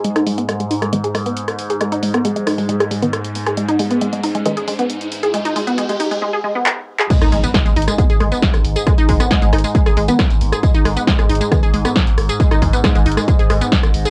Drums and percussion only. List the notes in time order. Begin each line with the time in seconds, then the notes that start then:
0.04 closed hi-hat
0.16 cross-stick, closed hi-hat
0.26 open hi-hat
0.38 closed hi-hat
0.48 cross-stick, closed hi-hat
0.60 closed hi-hat
0.70 open hi-hat
0.82 cross-stick, closed hi-hat
0.93 closed hi-hat
1.04 closed hi-hat
1.15 cross-stick, open hi-hat
1.26 closed hi-hat
1.37 closed hi-hat
1.48 cross-stick, closed hi-hat
1.59 open hi-hat
1.70 closed hi-hat
1.81 cross-stick, closed hi-hat
1.92 closed hi-hat
2.03 open hi-hat
2.14 cross-stick, closed hi-hat
2.25 closed hi-hat
2.36 closed hi-hat
2.47 cross-stick, open hi-hat
2.58 open hi-hat
2.69 closed hi-hat
2.80 cross-stick, closed hi-hat
2.91 open hi-hat
3.02 closed hi-hat
3.13 cross-stick, closed hi-hat
3.24 closed hi-hat
3.35 open hi-hat
3.46 cross-stick, closed hi-hat
3.57 closed hi-hat
3.69 closed hi-hat
3.79 open hi-hat
3.91 closed hi-hat
4.01 closed hi-hat
4.13 closed hi-hat
4.23 open hi-hat
4.35 closed hi-hat
4.45 closed hi-hat
4.57 closed hi-hat
4.68 open hi-hat
4.79 closed hi-hat
4.90 closed hi-hat
5.01 closed hi-hat
5.12 open hi-hat
5.23 closed hi-hat
5.34 closed hi-hat
5.45 closed hi-hat
5.56 open hi-hat
5.67 closed hi-hat
5.78 closed hi-hat
5.89 closed hi-hat
6.00 open hi-hat
6.11 open hi-hat
6.66 clap
7.00 clap
7.10 kick, closed hi-hat, tambourine, crash
7.22 cross-stick, closed hi-hat, tambourine
7.32 open hi-hat
7.44 closed hi-hat, tambourine
7.54 kick, cross-stick, snare, closed hi-hat, tambourine
7.66 closed hi-hat, tambourine
7.76 open hi-hat
7.82 closed hi-hat
7.88 cross-stick, closed hi-hat, tambourine
7.98 kick, closed hi-hat, tambourine
8.10 closed hi-hat, tambourine
8.21 cross-stick, open hi-hat
8.32 closed hi-hat, tambourine
8.43 kick, snare, closed hi-hat, tambourine
8.54 cross-stick, closed hi-hat, tambourine
8.65 open hi-hat
8.76 closed hi-hat, tambourine
8.87 kick, cross-stick, closed hi-hat, tambourine
8.98 closed hi-hat, tambourine
9.09 kick, open hi-hat
9.20 cross-stick, closed hi-hat, tambourine
9.31 kick, snare, closed hi-hat, tambourine
9.42 closed hi-hat, tambourine
9.53 cross-stick, open hi-hat
9.59 closed hi-hat
9.64 open hi-hat, tambourine
9.75 kick, closed hi-hat, tambourine
9.86 cross-stick, closed hi-hat, tambourine
9.97 open hi-hat
10.08 closed hi-hat, tambourine
10.19 kick, cross-stick, snare, closed hi-hat, tambourine
10.30 closed hi-hat, tambourine
10.41 open hi-hat
10.52 cross-stick, closed hi-hat, tambourine
10.63 kick, closed hi-hat, tambourine
10.74 closed hi-hat, tambourine
10.85 cross-stick, open hi-hat
10.97 closed hi-hat, tambourine
11.07 kick, snare, closed hi-hat, tambourine
11.19 cross-stick, closed hi-hat, tambourine
11.29 open hi-hat
11.35 closed hi-hat
11.41 closed hi-hat, tambourine
11.51 kick, cross-stick, closed hi-hat, tambourine
11.63 closed hi-hat, tambourine
11.73 open hi-hat
11.85 cross-stick, closed hi-hat, tambourine
11.96 kick, snare, closed hi-hat, tambourine
12.07 closed hi-hat, tambourine
12.18 cross-stick, open hi-hat
12.29 closed hi-hat, tambourine
12.40 kick, closed hi-hat, tambourine
12.51 cross-stick, closed hi-hat, tambourine
12.62 kick, open hi-hat
12.73 closed hi-hat, tambourine
12.84 kick, cross-stick, snare, closed hi-hat, tambourine
12.95 closed hi-hat, tambourine
13.06 open hi-hat
13.11 closed hi-hat
13.17 cross-stick, open hi-hat, tambourine
13.28 kick, closed hi-hat, tambourine
13.39 closed hi-hat, tambourine
13.50 cross-stick, open hi-hat
13.61 closed hi-hat, tambourine
13.72 kick, snare, closed hi-hat, tambourine
13.83 cross-stick, closed hi-hat, tambourine
13.94 open hi-hat
14.05 closed hi-hat, tambourine